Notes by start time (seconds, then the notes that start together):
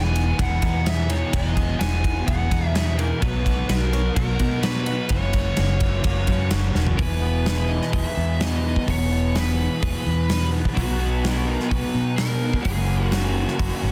Already playing: E1 E2 B2 E3 G#3 B3 G#4 G#5
0.16 ride
0.38 E1 E2 B2 E3 G#3 B3 G#4 F#5, kick, ride
0.61 E2 B2 E3 G#3 B3 D#4 G#4, kick, ride
0.85 G#4 E5, snare, ride
1.08 B2 E3 G#3 B3 D#4 G#4 C#5, ride
1.32 E1 E2 B2 E3 G#3 B3 G#4 D#5, kick, ride
1.56 G#4, kick, ride
1.79 E1 E2 B2 E3 G#3 B3 G#4 G#5, snare, ride
2.04 kick, ride
2.26 E1 E2 B2 E3 G#3 B3 G#4 F#5, kick, ride
2.50 E2 B2 E3 G#3 B3 D#4 G#4, kick, ride
2.74 G#4 E5, snare, ride
2.96 B2 E3 G#3 B3 D#4 G#4 A#4, ride
3.20 B1 B2 F#3 B3 D#4 F#4 B4, kick, ride
3.45 F#4, kick, ride
3.67 B1 B2 F#3 B3 D#4 F#4 B4, snare, ride
3.80 A#4
3.92 F#3, ride
4.15 B1 B2 F#3 B3 D#4 F#4 A#4, kick, ride
4.38 B2 F#3 B3 D#4 F#4, kick, ride
4.62 F#4 B4, snare, ride
4.86 F#3 B3 D#4 F#4, ride
5.09 F#1 F#2 C#3 E3 F#3 A#3 C#4 F#4 C#5, kick, ride
5.33 F#4, kick, ride
5.57 F#1 F#2 C#3 E3 F#3 A#3 C#4 F#4, snare, ride
5.80 E3, kick, ride
6.03 F#1 F#2 C#3 E3 F#3 A#3 C#4 F#4, kick, ride
6.27 F#2 C#3 E3 F#3 A#3 C#4 F#4, kick, ride
6.51 F#1 F#4, snare, ride
6.74 E1 C#3 E3 F#3 A#3 C#4 F#4, snare
6.87 floor tom
6.97 E1 E2 B2 E3 B3 E4 G#4 B4, kick, open hi-hat
7.01 E3
7.22 B3
7.45 E2 B2 E3 G#4, snare, open hi-hat
7.69 D#5
7.82 snare
7.92 E1 E2 B2 E3 G#4 D#5, kick, open hi-hat
8.04 E5
8.17 E2
8.40 E2 B2 E3 D#5, snare, open hi-hat
8.64 B3
8.76 kick
8.87 E1 E2 B2 E3 C#5, kick, open hi-hat
9.11 B3
9.35 E2 B2 E3 G#4 B4, snare, open hi-hat
9.48 snare
9.81 E1 E2 B2 G#4, kick, open hi-hat
9.85 E3
10.06 E2
10.28 E2 B2 E3, snare, open hi-hat
10.52 B3
10.65 kick
10.75 B1 B2 F#3 B3 D#4 F#4, kick, open hi-hat
11.23 B2 F#3 B3 F#4, snare, open hi-hat
11.30 E4
11.46 D#4 A#4
11.60 snare
11.69 B1 B2 F#3 B3 F#4 B4, kick, open hi-hat
11.94 B2 D#4
12.16 B2 F#3 B3 A#4, snare, open hi-hat
12.42 A#3
12.53 kick
12.62 F#1 F#2 C#3 E3 A#3 C#4 G#4, kick, open hi-hat
12.67 F#3 F#4
12.89 A#3
13.09 F#2 C#3 F#4, snare, open hi-hat
13.14 F#3
13.35 C#4
13.48 snare
13.58 F#1 F#2 C#3 F#3 F#4, kick, open hi-hat
13.83 G#1 C#4